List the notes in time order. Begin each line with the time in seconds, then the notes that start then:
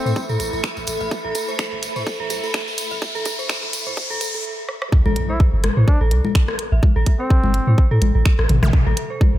Already playing: C4 A4 E5 B5, riser
0.05 A2 C5, tambourine
0.16 kick, tambourine
0.29 A2 A4, tambourine
0.40 A1 A4, closed hi-hat, tambourine
0.53 A1 A4, tambourine
0.63 finger snap, kick, tambourine
0.77 A1, tambourine
0.87 A1, closed hi-hat, tambourine
1.00 A1 E5, tambourine
1.11 kick, tambourine
1.25 A1 A4
1.35 A4, closed hi-hat, tambourine
1.48 C5, tambourine
1.59 finger snap, kick, tambourine
1.72 G1
1.83 closed hi-hat, tambourine
1.96 A2 C5, tambourine
2.07 kick, tambourine
2.20 A1 A4
2.30 C2 A4, closed hi-hat, tambourine
2.43 A4, tambourine
2.54 finger snap, kick, tambourine
2.68 tambourine
2.78 closed hi-hat, tambourine
2.91 A1 E5, tambourine
3.02 kick, tambourine
3.15 A1 A4, tambourine
3.25 A4, kick, closed hi-hat, tambourine
3.39 C5, tambourine
3.49 finger snap, kick, tambourine
3.63 G1
3.73 closed hi-hat, tambourine
3.86 A2 C5, tambourine
3.97 kick, tambourine
4.10 A2 A4, tambourine
4.21 A1 A4, closed hi-hat, tambourine
4.34 A1 A4, tambourine
4.69 cross-stick
4.82 cross-stick
4.92 kick, impact
5.06 A1 A4, high conga
5.16 A4, closed hi-hat
5.29 E4 C5
5.40 kick
5.53 G1
5.64 cross-stick, closed hi-hat, high conga
5.77 A2 C5
5.88 D4, kick
6.01 A1 A4
6.11 C2 A4, closed hi-hat
6.25 A4, high conga
6.35 finger snap, kick
6.48 cross-stick
6.59 closed hi-hat
6.72 A1 E5
6.83 kick, high conga
6.96 A1 A4
7.06 kick, closed hi-hat
7.20 C4 C5
7.30 kick
7.44 G1, high conga
7.54 closed hi-hat
7.67 A2 C5
7.78 kick
7.91 A2 A4
8.02 A1 A4, closed hi-hat, high conga
8.15 A1 A4
8.25 finger snap, kick
8.39 A1, cross-stick
8.49 A1, closed hi-hat, mid tom
8.63 A1 E5, cross-stick, mid tom, zap, high conga
8.73 kick
8.87 A1 A4
8.97 A4, closed hi-hat
9.10 C5
9.21 kick, high conga
9.34 G1